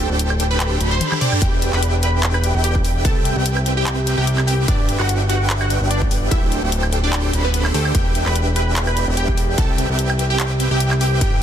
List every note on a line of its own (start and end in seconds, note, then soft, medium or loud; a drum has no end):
0.10 0.79 D1 loud
0.10 0.79 D4 medium
0.10 0.79 G4 medium
0.10 0.79 A4 medium
0.10 0.79 C5 medium
0.10 0.79 G5 medium
0.19 closed hi-hat medium
0.30 high woodblock medium
0.40 closed hi-hat medium
0.51 0.80 B4 medium
0.51 0.80 B5 loud
0.60 clap loud
0.60 closed hi-hat medium
0.60 reverse cymbal medium
0.80 1.01 D1 loud
0.80 1.19 D4 medium
0.80 1.19 G4 medium
0.80 1.19 A4 medium
0.80 1.19 C5 medium
0.80 1.19 B5 medium
0.80 closed hi-hat medium
0.91 1.14 C5 medium
0.91 1.14 C6 medium
1.01 closed hi-hat medium
1.01 high tom medium
1.12 clap soft
1.12 high tom medium
1.12 high woodblock medium
1.21 1.39 D4 loud
1.21 1.39 G4 medium
1.21 1.39 A4 medium
1.21 1.40 C5 medium
1.21 1.36 D5 medium
1.21 1.39 G5 loud
1.21 1.36 D6 medium
1.21 open hi-hat medium
1.21 mid tom medium
1.32 mid tom medium
1.32 high woodblock medium
1.42 1.71 E1 loud
1.42 1.70 D4 medium
1.42 1.64 G4 medium
1.42 1.70 G4 medium
1.42 1.70 B4 medium
1.42 1.70 E5 medium
1.42 1.64 G5 loud
1.42 1.70 G5 medium
1.42 kick loud
1.42 closed hi-hat medium
1.62 closed hi-hat medium
1.73 2.53 E1 loud
1.73 2.52 D4 medium
1.73 2.52 G4 medium
1.73 2.52 B4 medium
1.73 1.95 B4 medium
1.73 2.52 E5 medium
1.73 2.52 G5 medium
1.73 1.95 B5 loud
1.73 clap soft
1.83 closed hi-hat medium
2.03 2.25 B4 medium
2.03 2.25 B5 medium
2.03 closed hi-hat medium
2.23 clap loud
2.23 closed hi-hat medium
2.34 2.56 B4 medium
2.34 2.56 B5 loud
2.34 high woodblock medium
2.44 closed hi-hat medium
2.55 3.06 E1 loud
2.55 3.03 D4 medium
2.55 3.03 G4 medium
2.55 3.03 B4 medium
2.55 3.03 E5 medium
2.55 3.03 G5 loud
2.64 2.95 G4 medium
2.64 2.95 G5 loud
2.64 closed hi-hat medium
2.75 kick medium
2.85 open hi-hat medium
3.05 3.34 C2 loud
3.05 3.34 C4 medium
3.05 3.34 G4 medium
3.05 3.27 A4 medium
3.05 3.34 B4 medium
3.05 3.34 E5 medium
3.05 3.34 G5 medium
3.05 3.27 A5 loud
3.05 kick loud
3.05 closed hi-hat medium
3.25 closed hi-hat medium
3.36 4.16 C2 loud
3.36 4.15 C4 medium
3.36 4.15 G4 medium
3.36 4.15 B4 medium
3.36 4.15 E5 medium
3.36 4.15 G5 medium
3.46 closed hi-hat medium
3.57 high woodblock medium
3.66 closed hi-hat medium
3.77 4.06 G4 medium
3.77 4.06 G5 loud
3.87 clap loud
3.87 closed hi-hat medium
4.07 closed hi-hat medium
4.18 4.66 C2 loud
4.18 4.66 C4 medium
4.18 4.40 G4 medium
4.18 4.66 G4 medium
4.18 4.66 B4 medium
4.18 4.66 E5 medium
4.18 4.40 G5 loud
4.18 4.66 G5 loud
4.27 closed hi-hat medium
4.38 clap soft
4.38 high woodblock medium
4.47 4.63 G4 medium
4.47 4.63 G5 medium
4.47 open hi-hat medium
4.68 4.97 G1 loud
4.68 4.91 D4 medium
4.68 4.97 D4 medium
4.68 4.97 G4 medium
4.68 4.97 B4 medium
4.68 4.91 D5 loud
4.68 4.97 E5 medium
4.68 4.97 G5 medium
4.68 kick loud
4.68 closed hi-hat medium
4.89 closed hi-hat medium
4.99 5.79 G1 loud
4.99 5.79 D4 medium
4.99 5.22 F#4 medium
4.99 5.79 G4 medium
4.99 5.79 B4 medium
4.99 5.79 E5 medium
4.99 5.22 F#5 loud
4.99 5.79 G5 medium
4.99 clap soft
5.09 closed hi-hat medium
5.29 5.52 F#4 medium
5.29 5.52 F#5 loud
5.29 closed hi-hat medium
5.50 clap loud
5.50 closed hi-hat medium
5.61 5.83 F#4 medium
5.61 5.83 F#5 medium
5.61 high woodblock medium
5.70 closed hi-hat medium
5.81 6.30 G1 loud
5.81 6.29 D4 loud
5.81 6.29 G4 medium
5.81 6.29 B4 medium
5.81 6.29 E5 medium
5.81 6.29 G5 loud
5.90 6.21 D4 medium
5.90 6.21 D5 loud
5.90 closed hi-hat medium
6.02 kick medium
6.11 open hi-hat medium
6.31 6.61 D1 loud
6.31 6.60 D4 medium
6.31 6.54 E4 medium
6.31 6.60 G4 medium
6.31 6.60 A4 medium
6.31 6.60 C5 medium
6.31 6.54 E5 loud
6.31 6.60 G5 medium
6.31 kick loud
6.31 closed hi-hat medium
6.52 closed hi-hat medium
6.63 7.32 D1 loud
6.63 7.32 D4 medium
6.63 7.32 G4 medium
6.63 7.32 A4 medium
6.63 7.32 C5 medium
6.63 7.32 G5 medium
6.72 closed hi-hat medium
6.83 high woodblock medium
6.93 closed hi-hat medium
7.04 7.33 D4 medium
7.04 7.33 D5 loud
7.13 clap loud
7.13 closed hi-hat medium
7.33 7.72 D1 loud
7.33 7.72 D4 medium
7.33 7.72 G4 medium
7.33 7.72 A4 medium
7.33 7.72 C5 medium
7.33 7.72 B5 medium
7.33 closed hi-hat medium
7.45 7.67 B3 medium
7.45 7.67 B4 loud
7.54 closed hi-hat medium
7.65 clap soft
7.65 high woodblock medium
7.74 7.93 D2 loud
7.74 7.90 A3 medium
7.74 7.93 D4 loud
7.74 7.93 G4 medium
7.74 7.90 A4 medium
7.74 7.93 A4 medium
7.74 7.93 C5 medium
7.74 7.93 G5 loud
7.74 open hi-hat medium
7.85 high woodblock medium
7.94 8.24 E1 loud
7.94 8.24 D4 medium
7.94 8.17 G4 medium
7.94 8.24 G4 medium
7.94 8.24 B4 medium
7.94 8.24 E5 medium
7.94 8.17 G5 loud
7.94 8.24 G5 medium
7.94 kick loud
7.94 closed hi-hat medium
8.15 closed hi-hat medium
8.26 9.06 E1 medium
8.26 9.05 D4 medium
8.26 9.05 G4 medium
8.26 9.05 B4 medium
8.26 8.48 B4 medium
8.26 9.05 E5 medium
8.26 9.05 G5 medium
8.26 8.48 B5 loud
8.26 clap soft
8.36 closed hi-hat medium
8.56 8.78 B4 medium
8.56 8.78 B5 loud
8.56 closed hi-hat medium
8.76 clap loud
8.76 closed hi-hat medium
8.87 9.09 B4 medium
8.87 9.09 B5 medium
8.87 high woodblock medium
8.97 closed hi-hat medium
9.08 9.56 E1 loud
9.08 9.56 D4 loud
9.08 9.56 G4 medium
9.08 9.56 B4 medium
9.08 9.56 E5 medium
9.08 9.56 G5 loud
9.17 9.48 G4 medium
9.17 9.48 G5 loud
9.17 closed hi-hat medium
9.28 kick medium
9.38 open hi-hat medium
9.58 9.87 C2 loud
9.58 9.87 C4 medium
9.58 9.87 G4 medium
9.58 9.80 A4 medium
9.58 9.87 B4 medium
9.58 9.87 E5 medium
9.58 9.87 G5 medium
9.58 9.80 A5 loud
9.58 kick loud
9.58 closed hi-hat medium
9.78 closed hi-hat medium
9.89 10.69 C2 loud
9.89 10.68 C4 medium
9.89 10.68 G4 medium
9.89 10.69 B4 medium
9.89 10.68 E5 medium
9.89 10.68 G5 medium
9.99 closed hi-hat medium
10.10 high woodblock medium
10.19 closed hi-hat medium
10.30 10.59 G4 medium
10.30 10.59 G5 loud
10.40 clap loud
10.40 closed hi-hat medium
10.60 closed hi-hat medium
10.71 11.23 C2 loud
10.71 11.19 C4 loud
10.71 10.93 G4 medium
10.71 11.19 G4 medium
10.71 11.19 B4 medium
10.71 11.19 E5 medium
10.71 11.19 G5 loud
10.71 10.93 G5 medium
10.71 11.19 G5 loud
10.80 closed hi-hat medium
10.91 clap soft
10.91 high woodblock medium
11.01 11.16 G4 medium
11.01 11.16 G5 medium
11.01 open hi-hat medium
11.21 11.43 G1 loud
11.21 11.43 D4 medium
11.21 11.43 G4 medium
11.21 11.43 B4 medium
11.21 11.43 E5 medium
11.21 11.43 G5 loud
11.21 11.43 G5 medium
11.21 kick loud
11.21 closed hi-hat medium